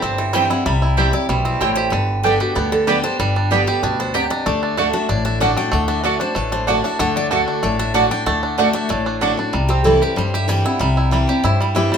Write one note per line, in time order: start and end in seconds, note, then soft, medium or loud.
0.00 0.47 G1 medium
0.00 0.63 G2 medium
0.00 0.18 E3 medium
0.00 0.33 G3 medium
0.00 0.47 C4 medium
0.00 0.16 E4 medium
0.00 0.97 G4 medium
0.00 0.18 C5 medium
0.18 0.63 E3 medium
0.18 0.33 E5 medium
0.33 0.50 E3 medium
0.33 0.65 G3 medium
0.33 0.50 G3 medium
0.33 0.43 C4 medium
0.33 0.50 C4 loud
0.33 0.43 E4 medium
0.33 0.48 E4 loud
0.33 0.44 C5 loud
0.33 0.50 G5 loud
0.33 0.44 G5 loud
0.50 0.66 C4 soft
0.50 0.65 E4 medium
0.50 0.81 E4 medium
0.50 0.65 F#5 medium
0.66 1.10 C2 loud
0.66 1.26 C3 medium
0.66 1.29 G3 medium
0.66 1.11 E5 medium
0.82 1.12 E4 medium
0.97 1.13 E3 medium
0.97 1.14 G3 medium
0.97 1.07 C4 medium
0.97 1.14 C4 medium
0.97 1.07 E4 loud
0.97 1.14 E4 medium
0.97 1.77 G4 medium
0.97 1.07 C5 loud
0.97 1.07 G5 loud
1.13 1.30 C4 medium
1.13 1.58 E4 medium
1.13 1.29 E4 medium
1.13 1.28 D5 loud
1.29 1.56 B1 loud
1.29 1.60 B2 medium
1.29 2.69 G3 medium
1.29 1.45 C5 medium
1.45 1.89 C4 medium
1.45 1.60 E4 medium
1.61 1.88 A1 medium
1.61 1.92 A2 medium
1.61 1.70 C4 medium
1.61 1.93 E4 medium
1.61 1.70 E4 loud
1.61 1.77 G4 medium
1.61 1.70 C5 loud
1.61 1.70 G5 loud
1.76 2.40 G4 medium
1.76 1.90 C5 loud
1.90 2.37 G1 loud
1.90 2.53 G2 medium
1.90 2.37 D3 medium
1.90 2.21 B4 medium
2.23 2.55 D3 medium
2.23 2.55 G3 medium
2.23 2.33 B3 medium
2.23 2.55 B3 medium
2.23 3.04 D4 medium
2.23 2.34 G4 medium
2.23 2.56 G4 medium
2.23 2.40 A4 medium
2.23 2.34 D5 loud
2.23 2.34 G5 loud
2.40 2.55 F#4 medium
2.40 2.85 G4 medium
2.55 3.01 D2 loud
2.55 2.86 D3 medium
2.55 3.01 B3 medium
2.55 2.72 G4 medium
2.72 3.16 D3 medium
2.72 2.87 A4 medium
2.87 3.03 D3 medium
2.87 3.18 G3 medium
2.87 3.04 G3 medium
2.87 2.97 B3 loud
2.87 3.04 B3 loud
2.87 2.97 G4 medium
2.87 3.03 G4 loud
2.87 3.03 B4 medium
2.87 2.97 D5 loud
2.87 2.97 G5 loud
3.04 3.20 B3 medium
3.04 3.36 D4 medium
3.04 3.19 G4 medium
3.04 3.19 C5 loud
3.19 3.64 G1 loud
3.19 3.80 G2 medium
3.19 3.51 G3 medium
3.19 3.36 B4 medium
3.36 3.51 D4 medium
3.36 3.83 D4 medium
3.51 3.82 D3 medium
3.51 3.96 G3 medium
3.51 3.82 G3 medium
3.51 3.60 B3 medium
3.51 3.82 B3 medium
3.51 3.67 G4 medium
3.51 3.61 G4 loud
3.51 3.83 G4 medium
3.51 3.61 D5 medium
3.51 3.61 G5 loud
3.67 4.12 G4 medium
3.67 3.82 B4 medium
3.83 4.27 D2 medium
3.83 4.13 B2 medium
3.83 4.31 D4 medium
3.83 3.99 B4 medium
4.00 4.43 B3 soft
4.00 4.14 C5 loud
4.14 4.45 C3 medium
4.14 4.24 B3 loud
4.14 4.24 G4 medium
4.14 4.46 G4 medium
4.14 4.30 D5 medium
4.14 4.24 D5 loud
4.14 4.24 G5 loud
4.30 4.62 D4 medium
4.30 4.46 D#5 medium
4.46 4.91 D2 loud
4.46 4.76 D3 medium
4.46 4.77 A3 medium
4.46 4.76 D5 medium
4.63 4.94 D4 medium
4.77 4.93 D3 medium
4.77 5.56 A3 medium
4.77 4.87 A3 loud
4.77 4.94 A3 medium
4.77 4.94 D4 medium
4.77 4.87 F#4 loud
4.77 4.93 F#4 loud
4.77 4.87 D5 loud
4.77 4.87 F#5 loud
4.93 5.09 D4 medium
4.93 5.10 D4 medium
4.93 5.09 F#4 medium
4.93 5.09 E5 loud
5.09 5.54 A1 medium
5.09 5.70 A2 medium
5.09 5.25 D4 medium
5.09 5.24 D5 medium
5.25 5.41 D4 medium
5.25 5.40 E5 loud
5.40 5.57 D3 medium
5.40 5.51 A3 medium
5.40 5.57 A3 medium
5.40 5.88 D4 medium
5.40 5.58 D4 medium
5.40 5.51 F#4 loud
5.40 5.56 F#4 loud
5.40 5.51 D5 loud
5.40 5.57 F#5 medium
5.40 5.51 F#5 loud
5.57 5.71 A3 medium
5.57 5.73 D4 medium
5.57 5.72 F#4 medium
5.57 5.73 G5 loud
5.72 6.17 D2 loud
5.72 6.02 D3 medium
5.72 6.35 A3 medium
5.72 5.87 F#5 medium
5.88 6.03 D4 medium
5.88 6.03 E5 loud
6.03 6.20 D3 medium
6.03 6.14 A3 loud
6.03 6.20 A3 medium
6.03 6.19 D4 medium
6.03 6.21 D4 medium
6.03 6.14 F#4 loud
6.03 6.19 F#4 medium
6.03 6.20 D5 medium
6.03 6.14 D5 loud
6.03 6.14 F#5 loud
6.20 6.52 D4 medium
6.20 6.37 D4 medium
6.20 6.35 F#4 medium
6.20 6.37 C5 loud
6.35 6.81 A1 loud
6.35 6.97 A2 medium
6.35 6.99 A3 medium
6.35 6.52 B4 loud
6.52 6.67 D4 medium
6.52 6.67 C5 loud
6.67 6.84 D3 medium
6.67 6.77 A3 loud
6.67 6.84 A3 loud
6.67 6.84 D4 medium
6.67 6.85 D4 medium
6.67 6.77 F#4 loud
6.67 6.83 F#4 medium
6.67 6.85 D5 medium
6.67 6.77 D5 loud
6.67 6.78 F#5 loud
6.84 7.15 D4 medium
6.84 7.00 D4 soft
6.84 6.99 F#4 medium
6.84 6.99 E5 medium
6.99 7.44 D2 loud
6.99 7.30 D3 loud
6.99 7.62 A3 medium
6.99 7.16 F#5 loud
7.16 7.29 D4 medium
7.16 7.26 D5 loud
7.31 7.62 D3 medium
7.31 7.41 A3 medium
7.31 7.62 A3 medium
7.31 7.47 D4 medium
7.31 7.62 D4 medium
7.31 7.41 F#4 loud
7.31 7.63 F#4 medium
7.31 7.41 D5 loud
7.31 7.41 F#5 loud
7.48 7.78 D4 medium
7.63 8.08 A1 medium
7.63 8.24 A2 loud
7.63 8.08 A3 medium
7.63 7.79 D5 medium
7.79 7.93 D4 medium
7.79 7.94 E5 loud
7.94 8.10 D3 loud
7.94 8.04 A3 medium
7.94 8.11 A3 medium
7.94 8.10 D4 medium
7.94 8.11 D4 medium
7.94 8.04 F#4 loud
7.94 8.10 F#4 loud
7.94 8.04 D5 loud
7.94 8.11 F#5 medium
7.94 8.04 F#5 loud
8.11 8.42 D4 medium
8.11 8.27 D4 soft
8.11 8.26 F#4 medium
8.11 8.26 G5 loud
8.26 8.71 D2 medium
8.26 8.56 D3 medium
8.26 8.72 A3 medium
8.26 8.71 F#5 medium
8.43 8.57 D4 medium
8.58 8.88 D3 medium
8.58 8.67 A3 loud
8.58 8.89 A3 medium
8.58 8.73 D4 medium
8.58 8.89 D4 medium
8.58 8.68 F#4 loud
8.58 8.89 F#4 loud
8.58 8.68 D5 loud
8.58 8.68 F#5 loud
8.73 9.05 D4 medium
8.73 8.89 E5 loud
8.89 9.34 A1 medium
8.89 9.50 A2 medium
8.89 9.35 A3 medium
8.89 9.41 D5 medium
9.06 9.20 D4 medium
9.21 9.37 D3 medium
9.21 9.31 A3 medium
9.21 9.38 A3 medium
9.21 9.38 D4 medium
9.21 9.38 D4 loud
9.21 9.31 F#4 medium
9.21 9.36 F#4 loud
9.21 9.31 D5 loud
9.21 9.31 F#5 loud
9.37 9.54 D4 medium
9.37 9.52 F#4 medium
9.53 9.98 C2 loud
9.53 10.14 C3 medium
9.53 10.17 G3 medium
9.69 10.14 C4 medium
9.69 9.84 G4 medium
9.84 10.01 E3 medium
9.84 10.01 G3 medium
9.84 10.01 C4 medium
9.84 10.30 E4 medium
9.84 10.00 E4 medium
9.84 10.01 A4 medium
10.01 10.17 C4 soft
10.01 10.16 E4 medium
10.01 10.34 G4 medium
10.01 10.17 B4 medium
10.16 10.77 G2 medium
10.16 10.62 G2 medium
10.16 10.49 G3 medium
10.16 10.34 C5 medium
10.34 11.29 G4 medium
10.34 10.49 E5 loud
10.48 10.64 E3 medium
10.48 10.64 G3 medium
10.48 10.80 G3 medium
10.48 10.65 C4 loud
10.48 10.63 E4 loud
10.48 10.65 G5 loud
10.64 10.80 C4 soft
10.64 10.79 E4 medium
10.64 10.96 E4 medium
10.64 10.80 F#5 medium
10.79 11.25 C2 loud
10.79 11.40 C3 loud
10.79 11.12 G3 medium
10.79 11.25 E5 medium
10.97 11.41 E4 medium
11.11 11.28 E3 medium
11.11 11.28 G3 medium
11.11 11.60 G3 medium
11.11 11.28 C4 medium
11.11 11.26 E4 medium
11.27 11.44 C4 medium
11.27 11.43 E4 medium
11.27 11.98 G4 medium
11.27 11.44 D5 medium
11.44 11.98 G2 loud
11.44 11.88 G2 loud
11.44 11.75 E4 medium
11.44 11.60 C5 medium
11.61 11.91 G3 medium
11.61 11.76 E4 medium
11.75 11.91 E3 medium
11.75 11.91 G3 medium
11.75 11.92 C4 medium
11.75 11.98 E4 medium
11.75 11.90 E4 loud
11.75 11.92 G4 medium
11.91 11.98 G3 medium
11.91 11.98 C4 medium
11.91 11.98 E4 medium
11.91 11.98 C5 loud